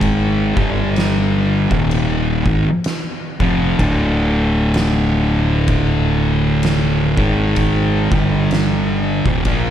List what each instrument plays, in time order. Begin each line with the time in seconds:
Already playing: fingered electric bass G#1, distorted electric guitar G#2 D#3 G#3
0.01 kick, crash
0.56 fingered electric bass G1, distorted electric guitar G2 D3 G3, kick
0.96 snare, crash
1.70 fingered electric bass D#1, distorted electric guitar D#2 A#2 D#3, kick
1.91 crash
2.45 fingered electric bass G#1, distorted electric guitar G#2 D#3, kick
2.84 snare, crash
3.40 fingered electric bass F1, distorted electric guitar F2 C3 F3, kick
3.79 fingered electric bass D1, distorted electric guitar D2 A2 D3, kick, crash
4.74 snare, crash
5.68 kick, crash
6.63 snare, crash
7.17 fingered electric bass G#1, distorted electric guitar G#2 D#3 G#3, kick
7.56 kick, crash
8.11 fingered electric bass G1, distorted electric guitar G2 D3 G3, kick
8.51 snare, crash
9.25 fingered electric bass D#1, distorted electric guitar D#2 A#2, kick
9.45 fingered electric bass A#1, distorted electric guitar A#2 F3 A#3, kick, crash